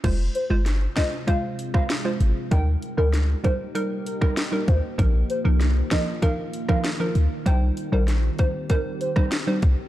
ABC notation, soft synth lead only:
X:1
M:4/4
L:1/16
Q:1/4=97
K:Fm
V:1 name="Soft synth lead"
z2 c z3 e z f z2 f z4 | g z2 B z2 c z B z B z3 c z | z2 c z3 e z f z2 f z4 | g z2 B z2 c z B z c z4 z |]